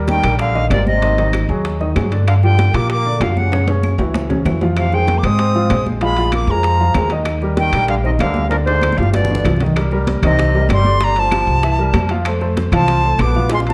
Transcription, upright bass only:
Already playing: D#2
0.24 A#1
0.70 G#1
1.49 D#2
1.96 G2
2.73 A#2
3.20 F#2
3.98 C#2
4.45 F2
5.23 G#2
5.70 A#1
6.47 F2
6.95 D#2
7.73 A#1
8.19 D2
8.98 G1
9.44 C2
10.22 C2
10.69 G1
11.47 C2
11.93 F2
12.72 C2
13.19 A#1

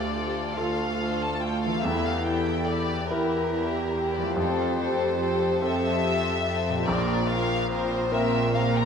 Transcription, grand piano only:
Already playing: D2
0.57 F4 A4
1.84 E2
3.11 E4 A#4
4.36 F2
5.62 C4 A4
6.88 A#1
8.12 C4 A#4

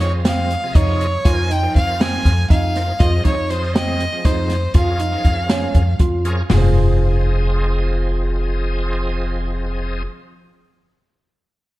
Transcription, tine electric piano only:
0.25 C4
0.75 D#4
1.25 F4
1.50 D#4
2.00 C4
2.50 D#4
3.00 F4
3.25 D#4
3.75 C4
4.25 D#4
4.75 F4
5.00 D#4
5.50 C#4
6.00 F4
6.50 F4 G#4
6.58 C5 F5

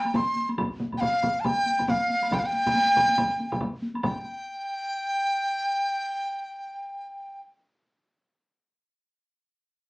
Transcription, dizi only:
Already playing: G5
0.16 C6
0.98 F5 G5
1.40 A5
1.45 G5
1.90 F5
2.34 G5
2.39 F5
2.46 G5
4.03 G5

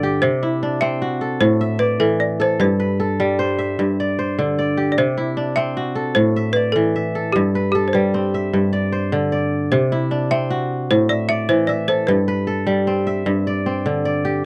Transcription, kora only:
Already playing: G2 D3 C4 C5 D5
0.03 G4
0.22 C3
0.43 E4
0.63 D4
0.82 C4
1.02 F#4
1.21 A4
1.41 A2
1.61 E5
1.79 D5
2.00 E3
2.40 A4
2.60 G2
2.80 B4
3.00 A4
3.20 G3
3.39 C5
3.58 E5
3.79 G2
4.00 D5
4.19 C5
4.39 D3
4.59 D5
4.77 G4
4.98 C3
5.17 E4
5.37 D4
5.57 C4
5.77 F#4
5.95 A4
6.16 A2
6.36 E5
6.56 D5
6.76 E3
6.96 E5
7.15 A4
7.36 G2
7.55 B4
7.75 A4
7.95 G3
8.14 C4
8.34 E5
8.53 G2
8.73 D5
8.92 C5
9.12 D3
9.32 D5
9.72 C3
9.92 E4
10.11 D4
10.31 C4
10.50 F#4
10.91 A2
11.10 E5
11.30 D5
11.49 E3
11.69 E5
11.88 A4
12.08 G2
12.28 B4
12.47 A4
12.67 G3
12.87 C4
13.07 E5
13.26 G2
13.47 D5
13.66 C4
13.86 D3
14.05 D5
14.25 G4

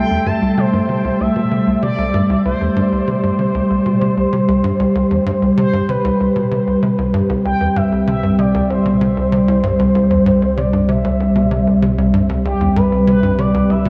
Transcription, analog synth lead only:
Already playing: G5
0.26 A5
0.58 C5
1.20 E5
1.83 D5
2.45 C5
5.58 C5
5.89 B4
7.45 G5
7.76 E5
8.07 E5
8.39 D5
8.70 C5
10.58 D5
10.89 E5
12.45 G4
12.76 B4
13.08 B4
13.39 D5
13.70 E5

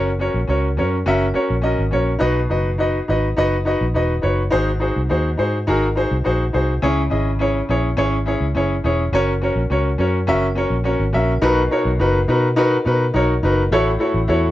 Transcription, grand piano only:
0.19 C#4 F#4 A#4 C#5
0.47 C#4 F#4 A#4 C#5
0.77 C#4 F#4 A#4 C#5
1.06 C#4 F#4 A#4 E5
1.34 C#4 F#4 A#4 C#5
1.62 C#4 F#4 A#4 D#5
1.91 C#4 F#4 A#4 C#5
2.19 B2 D#4 F#4 B4 D#5
2.49 D#4 F#4 B4 D#5
2.78 D#4 F#4 B4 D#5
3.08 D#4 F#4 B4 D#5
3.37 D#4 F#4 B4 D#5
3.65 D#4 F#4 B4 D#5
3.94 D#4 F#4 B4 D#5
4.22 D#4 F#4 B4 C#5
4.50 G#2 D#4 F#4 G#4 C5
4.79 D#4 F#4 G#4 C5
5.09 D#4 F#4 G#4 C5
5.37 D#4 F#4 G#4 C5
5.67 D#4 F#4 G#4 A#4
5.95 D#4 F#4 G#4 C5
6.24 D#4 F#4 G#4 C5
6.53 D#4 F#4 G#4 C5
6.82 C#3 C#4 E4 G#4 C#5
7.10 C#4 E4 G#4 D#5
7.39 C#4 E4 G#4 C#5
7.69 C#4 E4 G#4 C#5
7.97 C#4 E4 G#4 C#5
8.26 C#4 E4 G#4 C#5
8.55 C#4 E4 G#4 C#5
8.84 C#4 E4 G#4 C#5
9.13 C#4 F#4 A#4 C#5
9.41 C#4 F#4 A#4 C#5
9.70 C#4 F#4 A#4 C#5
9.98 C#4 F#4 A#4 C#5
10.27 C#4 F#4 A#4 E5
10.55 C#4 F#4 A#4 C#5
10.84 C#4 F#4 A#4 C#5
11.13 C#4 F#4 A#4 E5
11.42 B2 D#4 F#4 A#4 B4
11.71 D#4 F#4 A#4 C#5
11.99 D#4 F#4 A#4 B4
12.28 D#4 F#4 A#4 B4
12.56 D#4 F#4 A#4 B4
12.85 D#4 F#4 A#4 B4
13.14 D#4 F#4 A#4 C#5
13.43 D#4 F#4 A#4 B4
13.72 A2 E4 F#4 A4 C#5
13.99 E4 F#4 A4 C#5
14.28 E4 F#4 A4 C#5

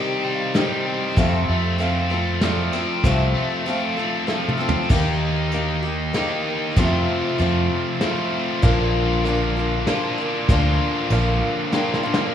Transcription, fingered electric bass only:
1.17 F2
1.48 F2
3.04 C2
4.90 D#2
6.77 F2
7.39 F2
8.63 A#1
10.49 D2
11.10 A#1

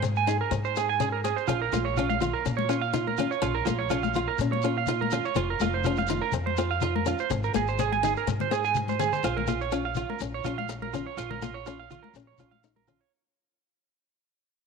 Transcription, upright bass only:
Already playing: G#2
0.51 G#2
1.48 A#1
1.72 A#1
2.46 A#2
3.42 A#1
3.66 A#1
4.39 A#2
5.36 F1
5.60 F1
6.33 F2
7.30 G#1
7.55 G#1
8.27 G#2
9.23 A#1
10.20 A#1
10.45 A#1
11.17 A#1
12.14 A#1
12.40 A#1

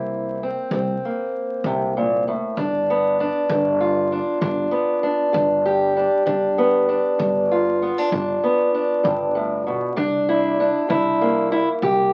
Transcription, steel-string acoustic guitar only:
Already playing: E3 A#3 C4 E4
0.43 C4
0.73 C3 C4
1.05 A#3
1.66 C3
1.97 A#2
2.28 A2
2.57 G2 D4
2.90 B3
3.20 D4
3.51 D3
3.80 F4
4.12 D4
4.41 G2 D4
4.71 B3
5.03 D4
5.33 D3
5.66 G4
5.97 D4
6.26 G2 D4
6.58 B3
6.89 D4
7.19 D3
7.51 F4
7.82 B3
7.98 D4
8.12 G2 D4
8.44 B3
8.74 D4
9.03 G2
9.35 A2
9.67 B2
9.96 C3 D4
10.29 E4
10.60 D4
10.89 E3 E4
11.21 A#3
11.52 E4
11.82 C3 G4

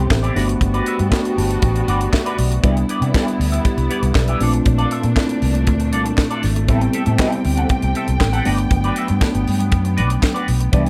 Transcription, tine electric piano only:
Already playing: B3 C4 E4 G4 A4 C5
0.10 C5 E5
0.35 A3 B3 D4 F#4
1.10 A3 B3 D4 F#4
1.37 A5
1.63 G5
1.89 F#5
2.13 E5
2.38 D5
2.63 G3 B3 D4 E4
3.14 G3 B3 D4 E4
3.64 E4 G4
3.90 G4 B4
4.16 B4 D5
4.40 A3 C4 D4 F4
5.17 A3 C4 D4 E4
6.69 G3 B3 C4 E4
7.19 G3 B3 C4 E4
8.45 F#3 A3 B3 D4
9.20 F#3 A3 B3 D4
10.72 E3 G3 B3 D4

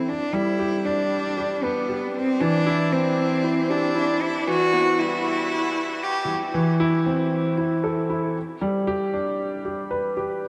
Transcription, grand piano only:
Already playing: A4
0.33 G3
0.59 G4
0.85 D4
1.37 G4
1.63 B4
1.89 G4
2.40 E3
2.66 E4
2.92 C4
3.44 E4
3.69 G4
3.95 E4
4.47 E3
4.73 B3
4.99 G3
6.54 E3
6.80 E4
7.06 C4
7.58 E4
7.84 A4
8.10 E4
8.61 G3
8.87 G4
9.14 D4
9.65 G4
9.91 B4
10.17 G4

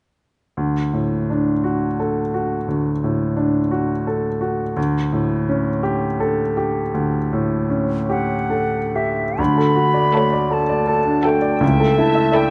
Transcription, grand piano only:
0.57 D2
0.93 A2
1.30 D4
1.64 F#4
2.00 A4
2.34 F#4
2.68 D2
3.04 A2
3.37 D4
3.71 F#4
4.07 A4
4.41 F#4
4.76 D2
5.13 A2
5.49 C#4
5.83 G4
6.20 A4
6.57 G4
6.94 D2
7.33 A2
7.70 C#4
8.10 G4
8.50 A4
8.95 G4
9.38 D2
9.58 A4
9.75 F#4
9.94 D5
10.15 C#5
10.33 D5
10.51 A4
10.69 D5
10.87 A4
11.05 D4
11.24 A4
11.42 D5
11.60 C#2
11.80 A4
11.98 E4
12.15 E5
12.32 D5

